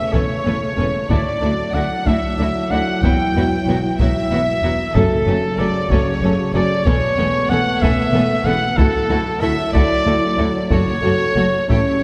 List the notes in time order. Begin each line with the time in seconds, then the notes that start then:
Already playing: C#3 A3 E5
0.12 E1 E2 A3 C#4 A4 B4 C#5, taiko
0.45 E1 E2 A3 C#4 A4 B4
0.77 E1 E2 A3 C#4 A4 B4
1.09 D2 F#3 A3 D4 E4 F#4 D5, taiko
1.41 D2 A3 D4 E4 F#4
1.74 D2 A3 D4 E4 F#4 F#5
2.06 D2 A3 D4 E4 F#4 E5, taiko
2.38 D2 A3 D4 E4 F#4
2.70 D2 A3 D4 E4 F#4 F#5
3.02 E1 E2 F#3 B3 E4 F#4 G5, taiko
3.35 E1 E2 F#3 B3 E4 F#4
3.67 E1 E2 F#3 B3 E4 F#4
3.98 E1 E2 F#3 B3 E4 F#4 E5, taiko
4.31 E1 E2 F#3 B3 E4 F#4
4.62 E1 E2 F#3 B3 E4 F#4
4.94 F#1 F#2 C#3 F#3 A3 C#4 A4, taiko
5.26 F#1 F#2 F#3 A3 C#4 A4
5.58 F#1 F#2 F#3 A3 C#4 A4 D5
5.89 F#1 F#2 F#3 A3 C#4 A4 C#5, taiko
6.22 F#1 F#2 F#3 A3 C#4 A4
6.54 F#1 F#2 F#3 A3 C#4 A4 D5
6.86 E1 E2 A3 B3 C#4 A4 C#5, taiko
7.18 E1 E2 A3 B3 C#4 A4
7.50 E1 E2 A3 B3 C#4 A4 F#5
7.81 E1 E2 A3 B3 C#4 A4 E5, taiko
8.13 E1 E2 A3 B3 C#4 A4
8.45 E1 E2 A3 B3 C#4 A4 F#5
8.77 D2 F#3 A3 E4 F#4 A4, taiko
9.09 D2 A3 E4 F#4 A4
9.41 D2 A3 E4 F#4 A4 E5
9.73 D2 A3 E4 F#4 A4 D5, taiko
10.05 D2 A3 E4 F#4 A4
10.37 D2 A3 E4 F#4 A4
10.70 F#1 F#2 A3 F#4 A4 C#5, taiko
11.02 F#1 F#2 A3 F#4 A4
11.35 F#1 F#2 A3 F#4 A4
11.69 A1 A2 G3 A3 C#4 E4 G4 A4 C#5, taiko